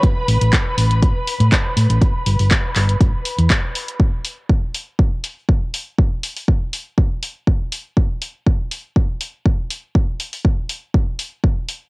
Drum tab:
HH |x-oxx-oxx-oxx-ox|x-oox-oxx-oxx-ox|--o---o---o---o-|--oo--o---o---o-|
CP |----x-------x---|----x-x-----x---|----------------|----------------|
BD |o---o---o---o---|o---o---o---o---|o---o---o---o---|o---o---o---o---|

HH |--o---o---o---o-|--oo--o---o---o-|
CP |----------------|----------------|
BD |o---o---o---o---|o---o---o---o---|